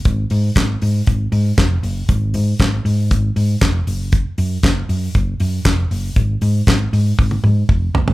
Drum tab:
HH |x-o-x-o-x-o-x-o-|x-o-x-o-x-o-x-o-|x-o-x-o-x-o-x-o-|x-o-x-o---------|
CP |----x-------x---|----x-------x---|----x-------x---|----x-----------|
SD |----o-------o---|----o-------o---|----o-------o---|----o-----------|
T1 |----------------|----------------|----------------|--------oo------|
T2 |----------------|----------------|----------------|----------o-----|
FT |----------------|----------------|----------------|--------------oo|
BD |o---o---o---o---|o---o---o---o---|o---o---o---o---|o---o---o---o---|